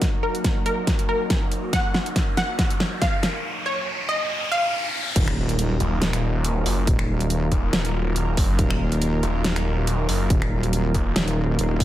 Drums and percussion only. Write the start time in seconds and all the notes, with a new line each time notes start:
0.02 kick, snare, closed hi-hat
0.35 closed hi-hat
0.44 kick, snare, closed hi-hat
0.66 closed hi-hat
0.87 kick, snare, closed hi-hat
0.99 closed hi-hat
1.30 kick, snare, closed hi-hat
1.52 closed hi-hat
1.73 kick, snare, closed hi-hat
1.94 snare
2.06 closed hi-hat
2.16 kick, snare, closed hi-hat
2.37 snare, closed hi-hat
2.59 kick, snare, closed hi-hat
2.70 closed hi-hat
2.80 snare
3.02 kick, snare, closed hi-hat
3.23 snare, closed hi-hat
5.16 kick, closed hi-hat, crash
5.28 finger snap
5.49 closed hi-hat
5.59 closed hi-hat
5.80 closed hi-hat
6.02 snare, closed hi-hat
6.13 finger snap, closed hi-hat
6.44 closed hi-hat
6.66 open hi-hat
6.87 kick, closed hi-hat
6.99 finger snap
7.20 closed hi-hat
7.30 closed hi-hat
7.52 kick, closed hi-hat
7.73 snare, closed hi-hat
7.85 closed hi-hat
8.16 closed hi-hat
8.37 kick, open hi-hat
8.59 kick, closed hi-hat
8.70 finger snap
8.92 closed hi-hat
9.02 closed hi-hat
9.23 closed hi-hat
9.44 snare, closed hi-hat
9.56 finger snap, closed hi-hat
9.87 closed hi-hat
10.09 open hi-hat
10.30 kick, closed hi-hat
10.42 finger snap
10.63 closed hi-hat
10.73 closed hi-hat
10.94 kick, closed hi-hat
11.16 snare, closed hi-hat
11.28 closed hi-hat
11.59 closed hi-hat
11.80 kick, open hi-hat